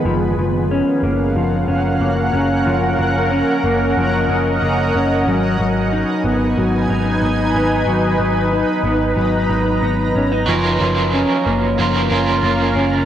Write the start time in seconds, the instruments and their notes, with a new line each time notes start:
Already playing: clean electric guitar B3 D#4
0.04 picked electric bass F#1, clean electric guitar F3, ambient pad C#4 A#4 F5 F#5
0.38 picked electric bass F#1, clean electric guitar F3
0.71 clean electric guitar C#4
1.03 picked electric bass F#1, clean electric guitar A#3
1.35 picked electric bass F#1, clean electric guitar F3
1.68 picked electric bass F#1, clean electric guitar C#4
2.00 picked electric bass F#1, clean electric guitar A#3
2.33 picked electric bass F#1, clean electric guitar C#4
2.66 picked electric bass F#1, clean electric guitar F3, ambient pad D#5
2.99 picked electric bass F#1, clean electric guitar F3
3.31 clean electric guitar C#4
3.64 picked electric bass F#1, clean electric guitar A#3
3.97 picked electric bass F#1, clean electric guitar F3
4.29 picked electric bass F#1, clean electric guitar C#4
4.62 picked electric bass F#1, clean electric guitar A#3
4.95 picked electric bass F#1, clean electric guitar C#4
5.27 picked electric bass G#1, clean electric guitar F#3, ambient pad D#4 B4 G#5
5.59 picked electric bass G#1, clean electric guitar F#3
5.92 clean electric guitar D#4
6.24 picked electric bass G#1, clean electric guitar B3
6.58 picked electric bass G#1, clean electric guitar F#3
6.89 picked electric bass G#1, clean electric guitar D#4
7.22 picked electric bass G#1, clean electric guitar B3
7.54 picked electric bass G#1, clean electric guitar D#4
7.86 picked electric bass G#1, clean electric guitar F#3, ambient pad A#5
8.19 picked electric bass G#1, clean electric guitar F#3
8.53 clean electric guitar D#4
8.83 picked electric bass G#1, clean electric guitar B3
9.16 picked electric bass G#1, clean electric guitar F#3
9.49 picked electric bass G#1, clean electric guitar D#4
9.82 picked electric bass G#1, clean electric guitar B3
10.16 picked electric bass G#1, clean electric guitar C#4
10.32 clean electric guitar D#4
10.46 picked electric bass F#1, clean electric guitar F3, overdriven electric guitar F#3 C#4, ambient pad C#4 A#4 F5
10.50 overdriven electric guitar F4 A#4
10.81 picked electric bass F#1, clean electric guitar F3
11.13 clean electric guitar C#4, vibraphone C#5
11.46 picked electric bass F#1, clean electric guitar A#3
11.78 picked electric bass F#1, clean electric guitar F3, overdriven electric guitar F#3 C#4 F4 A#4
12.10 picked electric bass F#1, clean electric guitar C#4, overdriven electric guitar C#4 F4 A#4
12.43 picked electric bass F#1, clean electric guitar A#3
12.75 picked electric bass F#1, clean electric guitar C#4